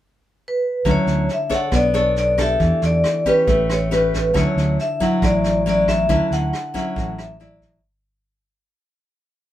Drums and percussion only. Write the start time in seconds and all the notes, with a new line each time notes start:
0.85 kick, cross-stick, snare
1.07 snare
1.29 snare
1.50 kick, snare
1.72 kick, cross-stick, snare
1.94 snare
2.16 snare
2.38 kick, cross-stick, snare
2.60 kick, snare
2.82 snare
3.04 cross-stick, snare
3.26 kick, snare
3.48 kick, snare
3.70 cross-stick, snare
3.92 snare
4.13 kick, snare
4.35 kick, cross-stick, snare
4.58 snare
4.79 snare
5.00 kick, snare
5.22 kick, cross-stick, snare
5.44 snare
5.67 snare
5.87 kick, cross-stick, snare
6.09 kick, snare
6.32 snare
6.53 cross-stick, snare
6.75 kick, snare
6.96 kick, snare
7.18 cross-stick, snare
7.40 snare
7.61 kick, snare